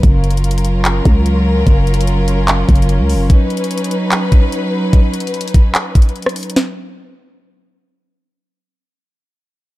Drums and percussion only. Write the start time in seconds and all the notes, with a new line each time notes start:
0.03 kick, closed hi-hat
0.24 closed hi-hat
0.31 closed hi-hat
0.37 closed hi-hat
0.44 closed hi-hat
0.51 closed hi-hat
0.58 closed hi-hat
0.65 closed hi-hat
0.85 clap, closed hi-hat
1.05 kick, closed hi-hat
1.26 closed hi-hat
1.67 kick, closed hi-hat
1.87 closed hi-hat
1.94 closed hi-hat
2.01 closed hi-hat
2.07 closed hi-hat
2.28 closed hi-hat
2.48 clap, closed hi-hat
2.69 kick, closed hi-hat
2.75 closed hi-hat
2.82 closed hi-hat
2.89 closed hi-hat
3.09 open hi-hat
3.30 kick, closed hi-hat
3.50 closed hi-hat
3.57 closed hi-hat
3.64 closed hi-hat
3.71 closed hi-hat
3.78 closed hi-hat
3.84 closed hi-hat
3.91 closed hi-hat
4.12 clap, closed hi-hat
4.32 kick, closed hi-hat
4.52 closed hi-hat
4.93 kick, closed hi-hat
5.14 closed hi-hat
5.20 closed hi-hat
5.27 closed hi-hat
5.34 closed hi-hat
5.41 closed hi-hat
5.48 closed hi-hat
5.54 kick, closed hi-hat
5.75 clap, closed hi-hat
5.95 kick, closed hi-hat
6.02 closed hi-hat
6.09 closed hi-hat
6.16 closed hi-hat
6.22 cross-stick, closed hi-hat
6.29 closed hi-hat
6.36 closed hi-hat, open hi-hat
6.43 closed hi-hat
6.50 closed hi-hat
6.56 snare